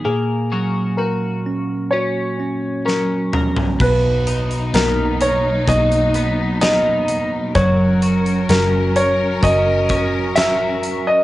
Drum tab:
CC |----------------|x---------------|----------------|
HH |----------------|--xxx-x-xxx-x-x-|x-xxx-x-x-x-x-x-|
SD |------------o---|----o-------o---|----o-------o---|
T2 |--------------o-|----------------|----------------|
FT |---------------o|----------------|----------------|
BD |----------------|o-------o-------|o-------o-o-----|